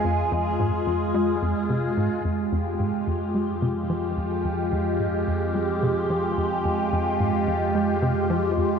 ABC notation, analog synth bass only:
X:1
M:4/4
L:1/8
Q:1/4=109
K:Fm
V:1 name="Analog synth bass" clef=bass
F,, F,, A,, F,, A, F,, C, A,, | F,, F,, A,, F,, A, C, F, F,, | F,, F,, A,, F,, A, C, F, F,, | F,, F,, A,, F,, A, C, F, F,, |]